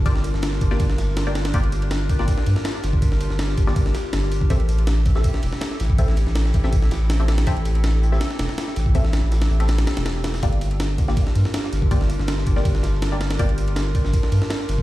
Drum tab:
RD |x-x-x-x-x-x-x-xx|xxxxx-x-x-x-x-x-|x-x-x-x-x-x-x-x-|xxxxx-x-x-x-x-x-|
HH |x-x-x-x-xxx-xxx-|x-x-x-x-x-o-x-x-|x-x-x-x-xxx-xxx-|x-x-x-x-x-o-x-x-|
SD |-o-ooo-o-oooo-oo|----o--o-o-oooo-|-o-ooo-o-oooo---|----o--o-o-oooo-|
BD |o-----o-o-------|o-----o-o------o|o-----o-o------o|o-----o-o------o|

RD |x-x-x-x-x-x-x-xx|xxxxx---x-x-x-x-|x-x-xx-xxxxxx-x-|xxxxx-x-x-x-x-x-|
HH |x-x-x-x-xxx-xxx-|x-x-x-x-x-o-x-x-|x-x-x-x-xxx-o-xx|x-x-x-x-x-o-x-x-|
SD |-o-ooo-o-oooo-oo|----o--oooooooo-|-oo-oo-oooooo-oo|----o--o-o-oooo-|
BD |o-----o-o-------|o--------------o|o---------------|o-----o-o------o|

RD |x-x-x-x-x-x-x-xx|xxxxx-x-x-x-x-x-|
HH |x-x-x-x-xxx-xxx-|x-x-x-x-x-o-x-x-|
SD |-o-ooo-o-oooo-oo|----o--o-o-oooo-|
BD |o-----o-o-------|o-----o-o------o|